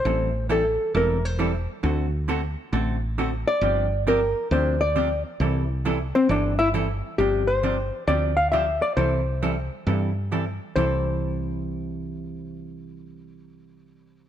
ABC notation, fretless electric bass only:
X:1
M:4/4
L:1/8
Q:"Swing" 1/4=134
K:C
V:1 name="Fretless electric bass" clef=bass
A,,,4 E,,,4 | D,,4 A,,,4 | G,,,4 D,,4 | C,,4 G,,,4 |
G,,,4 D,,4 | C,,4 G,,4 | C,,8- | C,,8 |]